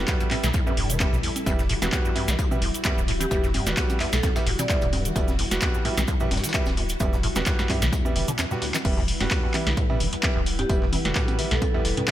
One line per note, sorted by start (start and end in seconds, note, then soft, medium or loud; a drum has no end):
0.00 0.29 G3 medium
0.00 8.81 G3 medium
0.00 0.29 B3 medium
0.00 8.81 E4 medium
0.00 0.29 F#4 loud
0.00 1.45 A4 medium
0.08 0.15 E2 loud
0.08 kick loud
0.08 snare loud
0.08 clap loud
0.08 closed hi-hat soft
0.08 tambourine medium
0.08 cabasa medium
0.20 0.24 F#2 medium
0.20 closed hi-hat soft
0.20 cabasa soft
0.31 0.35 A2 loud
0.31 0.44 G3 medium
0.31 0.44 B3 medium
0.31 0.44 E4 loud
0.31 clap medium
0.31 open hi-hat loud
0.31 tambourine medium
0.31 high conga medium
0.43 0.51 B1 medium
0.43 0.49 E3 medium
0.43 snare medium
0.43 closed hi-hat medium
0.43 mid tom loud
0.43 cabasa medium
0.54 0.61 E2 loud
0.54 kick loud
0.54 closed hi-hat medium
0.54 tambourine loud
0.54 cabasa medium
0.67 0.72 F#2 medium
0.67 0.74 G3 medium
0.67 0.74 B3 medium
0.67 0.74 E4 loud
0.67 high conga medium
0.67 cabasa soft
0.77 1.07 E1 medium
0.77 0.91 G2 medium
0.77 open hi-hat loud
0.77 tambourine medium
0.90 0.98 E3 medium
0.90 closed hi-hat medium
0.90 mid tom loud
0.90 cabasa medium
1.00 1.07 E2 medium
1.00 1.14 G3 medium
1.00 1.14 B3 medium
1.00 1.14 E4 medium
1.00 kick loud
1.00 snare loud
1.00 clap loud
1.00 closed hi-hat medium
1.00 tambourine medium
1.00 high conga medium
1.00 cabasa medium
1.13 1.20 B1 loud
1.13 snare soft
1.13 mid tom medium
1.13 cabasa soft
1.23 1.30 E2 medium
1.23 open hi-hat loud
1.23 tambourine medium
1.36 closed hi-hat medium
1.36 high conga medium
1.36 cabasa medium
1.46 1.76 E1 medium
1.46 1.53 E2 loud
1.46 1.60 G3 medium
1.46 1.60 B3 medium
1.46 1.60 E4 medium
1.46 8.83 F#4 medium
1.46 kick loud
1.46 closed hi-hat soft
1.46 tambourine medium
1.46 high conga medium
1.46 cabasa medium
1.59 1.62 F#2 medium
1.59 snare soft
1.59 cabasa soft
1.69 1.74 A2 medium
1.69 open hi-hat loud
1.69 tambourine medium
1.82 1.90 E1 medium
1.82 1.88 E3 medium
1.82 2.13 G3 medium
1.82 2.13 B3 medium
1.82 2.13 F#4 loud
1.82 snare medium
1.82 closed hi-hat medium
1.82 closed hi-hat soft
1.82 high conga medium
1.82 cabasa medium
1.92 2.00 E2 loud
1.92 kick loud
1.92 snare loud
1.92 clap loud
1.92 closed hi-hat soft
1.92 tambourine medium
1.92 cabasa medium
2.05 2.11 F#2 medium
2.05 cabasa soft
2.16 2.30 G2 medium
2.16 2.29 G3 medium
2.16 2.29 B3 medium
2.16 2.29 E4 loud
2.16 open hi-hat medium
2.16 tambourine medium
2.16 high conga medium
2.28 2.36 B1 medium
2.28 2.37 E3 medium
2.28 snare medium
2.28 closed hi-hat medium
2.28 cabasa medium
2.39 2.46 E2 medium
2.39 kick loud
2.39 closed hi-hat medium
2.39 tambourine medium
2.39 cabasa medium
2.51 2.58 G3 medium
2.51 2.58 B3 medium
2.51 2.58 E4 loud
2.51 mid tom medium
2.51 high conga medium
2.51 cabasa soft
2.62 2.71 E1 loud
2.62 2.69 E2 medium
2.62 open hi-hat loud
2.62 tambourine medium
2.74 closed hi-hat medium
2.74 cabasa medium
2.84 2.92 E2 loud
2.84 2.98 G3 medium
2.84 2.98 B3 medium
2.84 2.98 E4 medium
2.84 kick loud
2.84 snare loud
2.84 clap loud
2.84 closed hi-hat soft
2.84 tambourine medium
2.84 high conga medium
2.84 cabasa medium
2.97 3.26 D1 loud
2.97 3.01 F#2 medium
2.97 cabasa soft
3.08 3.12 A2 loud
3.08 open hi-hat medium
3.08 tambourine medium
3.20 3.26 E3 medium
3.20 3.37 G4 loud
3.20 closed hi-hat medium
3.20 high conga medium
3.20 cabasa medium
3.31 3.61 E1 loud
3.31 3.38 E2 loud
3.31 3.44 G3 medium
3.31 3.44 B3 medium
3.31 3.44 E4 medium
3.31 kick loud
3.31 closed hi-hat medium
3.31 tambourine medium
3.31 cabasa medium
3.43 3.49 F#2 medium
3.43 snare soft
3.43 cabasa soft
3.54 3.68 G2 medium
3.54 open hi-hat loud
3.54 tambourine medium
3.54 high conga medium
3.66 3.74 E1 medium
3.66 3.75 E3 medium
3.66 3.98 G3 medium
3.66 3.98 B3 medium
3.66 3.98 F#4 loud
3.66 snare medium
3.66 closed hi-hat medium
3.66 cabasa medium
3.77 3.84 E2 medium
3.77 kick loud
3.77 snare loud
3.77 clap loud
3.77 closed hi-hat medium
3.77 tambourine medium
3.77 cabasa medium
3.90 closed hi-hat soft
3.90 high conga medium
3.90 cabasa soft
4.00 4.07 E2 medium
4.00 4.14 G3 medium
4.00 4.14 B3 medium
4.00 4.14 E4 loud
4.00 snare loud
4.00 clap medium
4.00 open hi-hat medium
4.00 tambourine medium
4.13 4.20 B1 medium
4.13 4.29 A4 loud
4.13 snare medium
4.13 snare loud
4.13 closed hi-hat medium
4.13 mid tom medium
4.13 tambourine medium
4.13 cabasa medium
4.23 4.30 E2 loud
4.23 kick loud
4.23 snare loud
4.23 closed hi-hat medium
4.23 tambourine medium
4.23 high conga medium
4.23 cabasa medium
4.36 4.39 F#2 medium
4.36 4.43 G3 medium
4.36 4.43 B3 medium
4.36 4.43 E4 loud
4.36 snare loud
4.36 tambourine medium
4.36 cabasa soft
4.46 4.55 E1 loud
4.46 4.51 A2 loud
4.46 closed hi-hat soft
4.46 open hi-hat loud
4.59 4.65 E3 medium
4.59 4.66 D5 medium
4.59 closed hi-hat medium
4.59 mid tom loud
4.59 tambourine medium
4.59 high conga medium
4.59 cabasa medium
4.69 4.76 E2 loud
4.69 4.83 G3 medium
4.69 4.83 B3 medium
4.69 4.83 E4 medium
4.69 4.78 D5 medium
4.69 kick loud
4.69 snare loud
4.69 clap loud
4.69 closed hi-hat medium
4.69 tambourine medium
4.69 cabasa medium
4.81 5.11 D1 loud
4.81 4.88 F#2 medium
4.81 closed hi-hat soft
4.81 mid tom medium
4.81 cabasa soft
4.93 5.07 G2 medium
4.93 open hi-hat medium
4.93 tambourine medium
4.93 high conga medium
5.05 5.14 E3 medium
5.05 closed hi-hat medium
5.05 cabasa medium
5.16 5.45 E1 loud
5.16 5.23 E2 medium
5.16 5.29 G3 medium
5.16 5.29 B3 medium
5.16 5.29 E4 loud
5.16 kick loud
5.16 closed hi-hat medium
5.16 tambourine medium
5.16 cabasa medium
5.28 snare soft
5.28 high conga medium
5.28 cabasa soft
5.39 5.46 E2 medium
5.39 open hi-hat loud
5.39 tambourine medium
5.51 5.59 E1 medium
5.51 5.82 G3 medium
5.51 5.82 B3 medium
5.51 5.82 F#4 loud
5.51 snare medium
5.51 closed hi-hat soft
5.51 closed hi-hat medium
5.51 cabasa medium
5.61 5.69 E2 loud
5.61 kick loud
5.61 snare loud
5.61 clap loud
5.61 closed hi-hat medium
5.61 tambourine medium
5.61 high conga medium
5.61 cabasa medium
5.74 5.78 F#2 medium
5.74 cabasa soft
5.85 5.89 A2 loud
5.85 5.98 G3 medium
5.85 5.98 B3 medium
5.85 5.98 E4 loud
5.85 open hi-hat medium
5.85 tambourine medium
5.97 6.05 B1 medium
5.97 6.03 E3 medium
5.97 snare medium
5.97 closed hi-hat medium
5.97 high conga medium
5.97 cabasa medium
6.08 6.15 E2 loud
6.08 kick loud
6.08 closed hi-hat medium
6.08 tambourine medium
6.08 cabasa medium
6.20 6.26 F#2 medium
6.20 6.28 G3 medium
6.20 6.28 B3 medium
6.20 6.28 E4 loud
6.20 mid tom medium
6.20 cabasa soft
6.31 6.40 E1 loud
6.31 6.45 G2 medium
6.31 snare medium
6.31 open hi-hat loud
6.31 tambourine medium
6.31 high conga medium
6.37 snare medium
6.37 tambourine medium
6.44 6.52 E3 medium
6.44 snare medium
6.44 closed hi-hat medium
6.44 tambourine medium
6.44 cabasa medium
6.49 snare loud
6.49 tambourine medium
6.54 6.61 E2 medium
6.54 6.67 G3 medium
6.54 6.67 B3 medium
6.54 6.67 E4 medium
6.54 kick loud
6.54 snare loud
6.54 clap loud
6.54 closed hi-hat medium
6.54 tambourine medium
6.54 cabasa medium
6.65 6.95 D1 loud
6.65 snare loud
6.65 tambourine medium
6.65 high conga medium
6.65 cabasa soft
6.77 6.84 E2 medium
6.77 open hi-hat medium
6.77 tambourine medium
6.89 closed hi-hat medium
6.89 cabasa medium
7.00 7.30 E1 loud
7.00 7.07 E2 loud
7.00 7.14 G3 medium
7.00 7.14 B3 medium
7.00 7.14 E4 medium
7.00 kick loud
7.00 closed hi-hat medium
7.00 tambourine medium
7.00 high conga medium
7.00 cabasa medium
7.13 7.16 F#2 medium
7.13 snare soft
7.13 cabasa soft
7.23 7.28 A2 loud
7.23 open hi-hat loud
7.23 tambourine medium
7.35 7.43 E1 medium
7.35 7.42 E3 medium
7.35 7.67 G3 medium
7.35 7.67 B3 medium
7.35 7.67 F#4 loud
7.35 snare medium
7.35 closed hi-hat medium
7.35 high conga medium
7.35 cabasa medium
7.46 7.53 E2 loud
7.46 kick loud
7.46 snare loud
7.46 clap loud
7.46 closed hi-hat medium
7.46 tambourine loud
7.46 cabasa medium
7.59 7.65 F#2 medium
7.59 snare medium
7.59 closed hi-hat soft
7.59 cabasa soft
7.69 7.84 G2 medium
7.69 7.83 G3 medium
7.69 7.83 B3 medium
7.69 7.83 E4 loud
7.69 kick medium
7.69 clap medium
7.69 open hi-hat loud
7.69 tambourine medium
7.69 high conga medium
7.82 7.89 B1 medium
7.82 7.91 E3 medium
7.82 snare medium
7.82 closed hi-hat medium
7.82 mid tom medium
7.82 cabasa medium
7.93 8.17 E2 medium
7.93 kick loud
7.93 closed hi-hat medium
7.93 tambourine medium
7.93 cabasa medium
8.05 8.12 G3 medium
8.05 8.12 B3 medium
8.05 8.12 E4 loud
8.05 high conga medium
8.05 cabasa soft
8.16 8.25 E1 loud
8.16 8.23 E3 loud
8.16 8.24 G3 medium
8.16 8.24 B3 medium
8.16 8.24 E4 medium
8.16 open hi-hat loud
8.16 tambourine medium
8.28 8.32 D3 loud
8.28 closed hi-hat medium
8.28 mid tom medium
8.28 cabasa medium
8.38 8.46 E2 loud
8.38 snare loud
8.38 clap loud
8.38 closed hi-hat medium
8.38 tambourine medium
8.38 high conga medium
8.38 cabasa medium
8.51 8.55 G2 loud
8.51 8.63 G3 medium
8.51 8.63 B3 medium
8.51 8.63 F#4 medium
8.51 snare soft
8.51 mid tom medium
8.51 cabasa soft
8.62 8.72 D2 medium
8.62 snare loud
8.62 open hi-hat medium
8.62 tambourine medium
8.74 8.78 E3 medium
8.74 snare loud
8.74 clap medium
8.74 closed hi-hat medium
8.74 tambourine medium
8.74 high conga medium
8.74 cabasa medium
8.85 9.15 E1 loud
8.85 8.89 E2 medium
8.85 8.98 G3 medium
8.85 12.11 G3 medium
8.85 8.98 B3 medium
8.85 12.11 E4 medium
8.85 8.98 E4 medium
8.85 12.11 B4 medium
8.85 kick loud
8.85 closed hi-hat medium
8.85 crash loud
8.85 tambourine medium
8.85 high conga medium
8.95 9.03 E2 loud
8.95 12.11 B4 medium
8.95 12.11 F#5 medium
8.95 snare soft
9.08 open hi-hat loud
9.08 tambourine medium
9.20 9.28 E1 medium
9.20 9.26 G2 medium
9.20 9.52 G3 medium
9.20 9.52 B3 medium
9.20 9.52 F#4 loud
9.20 snare medium
9.20 closed hi-hat soft
9.20 closed hi-hat medium
9.20 high conga medium
9.31 9.41 E2 medium
9.31 kick loud
9.31 snare loud
9.31 clap loud
9.31 closed hi-hat medium
9.31 tambourine medium
9.43 9.47 E2 loud
9.54 9.68 E3 medium
9.54 9.67 G3 medium
9.54 9.67 B3 medium
9.54 9.67 E4 medium
9.54 clap medium
9.54 open hi-hat loud
9.54 tambourine medium
9.54 high conga medium
9.67 9.74 B1 medium
9.67 9.75 D3 loud
9.67 snare medium
9.67 closed hi-hat medium
9.77 10.02 A2 medium
9.77 kick loud
9.77 closed hi-hat medium
9.77 tambourine medium
9.90 9.97 G3 medium
9.90 9.97 B3 medium
9.90 9.97 E4 loud
9.90 mid tom medium
9.90 high conga medium
10.00 10.09 E1 loud
10.00 10.07 E3 loud
10.00 open hi-hat loud
10.00 tambourine medium
10.13 10.16 E2 medium
10.13 closed hi-hat medium
10.23 10.28 E2 medium
10.23 10.37 G3 medium
10.23 10.37 B3 medium
10.23 10.37 E4 medium
10.23 kick loud
10.23 snare loud
10.23 clap loud
10.23 closed hi-hat medium
10.23 tambourine medium
10.23 high conga medium
10.36 10.65 D1 loud
10.36 10.42 E2 loud
10.46 open hi-hat medium
10.46 tambourine medium
10.59 10.65 G2 medium
10.59 10.75 G4 medium
10.59 closed hi-hat medium
10.59 high conga medium
10.69 10.99 E1 loud
10.69 10.80 E2 medium
10.69 10.83 G3 medium
10.69 10.83 B3 medium
10.69 10.83 E4 medium
10.69 kick loud
10.69 closed hi-hat medium
10.69 tambourine medium
10.82 10.86 E2 loud
10.82 snare soft
10.92 11.07 E3 medium
10.92 open hi-hat loud
10.92 tambourine medium
10.92 high conga medium
11.05 11.13 E1 medium
11.05 11.14 D3 loud
11.05 11.36 G3 medium
11.05 11.36 B3 medium
11.05 11.36 F#4 loud
11.05 snare medium
11.05 closed hi-hat medium
11.15 11.40 A2 medium
11.15 kick loud
11.15 snare loud
11.15 clap loud
11.15 closed hi-hat medium
11.15 tambourine medium
11.28 closed hi-hat soft
11.28 high conga medium
11.39 11.46 E3 loud
11.39 11.52 G3 medium
11.39 11.52 B3 medium
11.39 11.52 E4 loud
11.39 open hi-hat loud
11.39 tambourine medium
11.51 11.59 B1 medium
11.51 11.55 E2 medium
11.51 12.11 A4 medium
11.51 snare medium
11.51 closed hi-hat medium
11.51 mid tom medium
11.62 11.66 E2 medium
11.62 kick loud
11.62 closed hi-hat medium
11.62 tambourine medium
11.62 high conga medium
11.74 11.80 E2 loud
11.74 11.81 G3 medium
11.74 11.81 B3 medium
11.74 11.81 E4 loud
11.85 11.94 E1 loud
11.85 snare loud
11.85 open hi-hat loud
11.85 tambourine medium
11.97 12.03 G2 medium
11.97 closed hi-hat medium
11.97 mid tom loud
11.97 high conga medium
12.08 kick loud
12.08 clap loud